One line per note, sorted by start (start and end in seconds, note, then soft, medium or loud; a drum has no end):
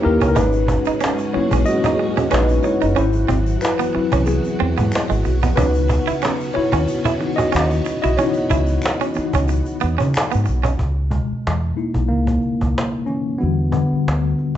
0.00 0.35 E3 medium
0.00 0.02 A#3 medium
0.00 0.30 A#3 medium
0.00 0.33 C#4 medium
0.00 0.03 D#4 medium
0.00 0.30 D#4 medium
0.00 0.03 E4 medium
0.00 0.30 E4 medium
0.00 0.04 G4 medium
0.00 0.35 G4 medium
0.00 0.31 G4 medium
0.00 0.35 B4 medium
0.00 0.37 C#5 medium
0.00 muted clean electric guitar stroke soft
0.05 0.19 D#2 medium
0.05 0.27 A#4 medium
0.21 0.34 C#2 medium
0.21 0.30 C#4 medium
0.21 cajon bass medium
0.21 cajon slap soft
0.21 shaker soft
0.28 0.35 A#4 medium
0.35 0.76 G#1 medium
0.35 2.94 C#3 medium
0.35 2.94 G#3 medium
0.35 0.46 G#3 medium
0.35 2.94 C#4 medium
0.35 1.30 D#4 medium
0.35 2.94 F#4 medium
0.35 1.36 B4 medium
0.35 cajon bass loud
0.35 shaker medium
0.52 shaker soft
0.68 muted clean electric guitar stroke soft
0.68 cajon bass medium
0.68 shaker soft
0.85 0.95 D#4 medium
0.85 muted fingered electric bass stroke soft
0.85 shaker soft
1.01 1.11 C#4 medium
1.01 finger snap medium
1.01 cajon slap loud
1.01 shaker medium
1.18 shaker soft
1.34 2.28 F#3 medium
1.34 2.28 A#3 soft
1.34 2.28 B3 medium
1.34 2.28 C#4 medium
1.34 1.65 E4 medium
1.34 1.64 C#5 medium
1.34 muted clean electric guitar stroke soft
1.34 muted fingered electric bass stroke soft
1.34 cajon slap soft
1.51 1.64 A#1 medium
1.51 1.61 C#4 medium
1.51 cajon bass medium
1.51 cajon slap soft
1.51 shaker medium
1.65 2.28 F#4 medium
1.65 2.33 D#5 loud
1.65 shaker medium
1.83 1.94 D#4 medium
1.83 cajon bass medium
1.83 shaker soft
1.98 muted clean electric guitar stroke soft
1.98 cajon slap soft
2.17 2.25 C#4 medium
2.17 cajon bass medium
2.17 shaker soft
2.31 2.58 A#1 medium
2.31 2.41 C#4 medium
2.31 2.62 D#4 medium
2.31 2.65 B4 medium
2.31 finger snap medium
2.31 cajon slap loud
2.31 shaker medium
2.49 shaker soft
2.63 2.95 E4 medium
2.63 2.97 C#5 medium
2.63 muted clean electric guitar stroke soft
2.63 shaker soft
2.81 2.95 F#1 medium
2.81 2.90 D#4 medium
2.81 shaker soft
2.96 3.24 G#1 loud
2.96 5.55 E3 medium
2.96 5.55 F#3 medium
2.96 3.06 C#4 medium
2.96 3.58 E4 medium
2.96 10.75 F#4 medium
2.96 3.63 C5 medium
2.96 shaker medium
3.13 shaker soft
3.28 3.55 G#1 medium
3.28 3.38 C4 medium
3.28 cajon bass medium
3.28 shaker soft
3.46 shaker soft
3.61 3.95 E4 medium
3.61 4.29 B4 medium
3.61 finger snap medium
3.61 cajon slap loud
3.61 shaker medium
3.79 3.88 B3 medium
3.79 shaker soft
3.94 4.88 F#3 medium
3.94 4.89 C4 medium
3.94 4.89 E4 medium
3.94 muted clean electric guitar stroke medium
3.94 muted fingered electric bass stroke soft
3.94 cajon slap soft
4.12 4.39 C2 medium
4.12 4.21 C#4 medium
4.12 cajon bass medium
4.12 cajon slap soft
4.12 shaker soft
4.26 5.21 B3 medium
4.26 5.20 G#4 medium
4.26 muted clean electric guitar stroke soft
4.26 cajon slap soft
4.26 shaker medium
4.44 shaker soft
4.60 4.75 E2 medium
4.60 4.70 C4 loud
4.77 4.91 G#2 loud
4.77 4.86 B3 medium
4.77 cajon bass medium
4.77 shaker soft
4.92 finger snap medium
4.92 cajon slap loud
4.92 shaker medium
5.10 5.22 G#1 medium
5.10 5.18 G#3 medium
5.10 shaker soft
5.24 5.52 B1 medium
5.24 muted clean electric guitar stroke soft
5.24 shaker soft
5.43 5.51 B3 medium
5.43 cajon bass medium
5.43 shaker soft
5.56 5.98 C#2 loud
5.56 8.14 C#3 medium
5.56 10.76 C#3 medium
5.56 7.19 B3 soft
5.56 10.75 B3 medium
5.56 5.67 C#4 medium
5.56 6.52 D#4 medium
5.56 6.57 B4 medium
5.56 cajon bass loud
5.56 shaker medium
5.74 shaker soft
5.89 muted clean electric guitar stroke soft
5.89 cajon bass medium
5.89 shaker soft
6.07 6.16 E4 medium
6.07 muted fingered electric bass stroke soft
6.07 shaker soft
6.22 6.33 C#4 medium
6.22 finger snap medium
6.22 cajon slap loud
6.22 shaker medium
6.40 shaker soft
6.54 7.35 E4 medium
6.54 7.40 C#5 loud
6.54 muted clean electric guitar stroke soft
6.54 muted fingered electric bass stroke soft
6.54 cajon slap soft
6.72 6.85 D#2 medium
6.72 6.81 C#4 medium
6.72 cajon bass medium
6.72 cajon slap soft
6.72 shaker soft
6.87 cajon slap soft
6.87 shaker medium
7.05 7.14 E4 medium
7.05 cajon bass medium
7.05 shaker soft
7.20 7.49 E3 medium
7.20 7.50 B3 soft
7.20 7.50 D#4 medium
7.20 muted clean electric guitar stroke soft
7.20 cajon slap soft
7.36 7.46 C#4 medium
7.36 7.99 F#4 medium
7.36 8.01 D#5 medium
7.36 cajon bass medium
7.36 shaker soft
7.52 7.80 D#2 medium
7.52 7.62 C#4 medium
7.52 finger snap medium
7.52 cajon slap loud
7.52 shaker medium
7.70 shaker soft
7.85 muted clean electric guitar stroke soft
7.85 shaker soft
8.02 8.16 B1 medium
8.02 8.12 E4 medium
8.02 8.18 F#4 medium
8.02 8.18 D#5 medium
8.02 shaker soft
8.17 8.62 E3 medium
8.17 8.63 B3 soft
8.17 8.28 C#4 medium
8.17 8.63 D#4 medium
8.17 10.10 E4 medium
8.17 10.09 C#5 medium
8.17 cajon slap medium
8.17 shaker medium
8.34 shaker soft
8.50 8.77 C#2 loud
8.50 8.61 E4 medium
8.50 cajon bass medium
8.50 shaker medium
8.67 shaker soft
8.82 finger snap medium
8.82 cajon slap loud
8.82 shaker medium
9.00 9.09 C#4 medium
9.00 shaker soft
9.14 9.45 E3 soft
9.14 9.45 B3 soft
9.14 9.45 D#4 medium
9.14 muted clean electric guitar stroke soft
9.14 cajon slap soft
9.14 shaker soft
9.18 muted fingered electric bass stroke soft
9.33 9.60 C#2 medium
9.33 9.43 C#4 medium
9.33 cajon bass medium
9.33 cajon slap soft
9.33 shaker soft
9.48 muted clean electric guitar stroke soft
9.48 cajon slap soft
9.48 shaker medium
9.66 shaker soft
9.80 9.97 E2 medium
9.80 9.91 B3 medium
9.80 cajon slap soft
9.80 shaker soft
9.98 10.13 C#3 medium
9.98 10.07 C#4 medium
9.98 cajon bass medium
9.98 shaker soft
10.14 finger snap medium
10.14 cajon slap loud
10.14 shaker medium
10.32 10.45 G#2 medium
10.32 10.40 B3 medium
10.32 shaker soft
10.46 10.74 B1 medium
10.46 muted clean electric guitar stroke soft
10.46 shaker soft
10.63 10.72 C#4 medium
10.63 cajon bass medium
10.63 cajon slap soft
10.63 shaker soft
10.79 11.20 C#2 medium
10.79 cajon bass medium
11.11 12.06 B2 medium
11.11 12.12 G#3 medium
11.11 cajon bass medium
11.33 muted fingered electric bass stroke soft
11.47 11.72 E2 medium
11.47 cajon slap medium
11.76 12.07 A#3 soft
11.76 13.36 D#4 soft
11.76 13.36 E4 medium
11.76 cajon slap soft
11.94 12.13 B1 medium
11.94 cajon bass medium
11.94 cajon slap soft
12.08 12.71 C#3 medium
12.08 12.70 A#3 medium
12.08 cajon slap soft
12.13 12.37 C#2 medium
12.27 cajon bass medium
12.42 cajon slap soft
12.61 12.73 C#2 medium
12.61 cajon bass medium
12.78 cajon slap loud
13.06 13.38 E3 medium
13.06 13.40 C#4 medium
13.06 cajon slap soft
13.38 13.71 D3 medium
13.38 13.84 G3 soft
13.38 13.71 B3 medium
13.38 13.85 D4 soft
13.38 13.85 F#4 soft
13.38 cajon slap soft
13.43 13.82 E2 medium
13.72 14.57 D3 medium
13.72 14.57 B3 medium
13.72 cajon bass medium
13.93 muted fingered electric bass stroke soft
14.08 14.33 D2 medium
14.08 cajon slap medium
14.39 cajon slap soft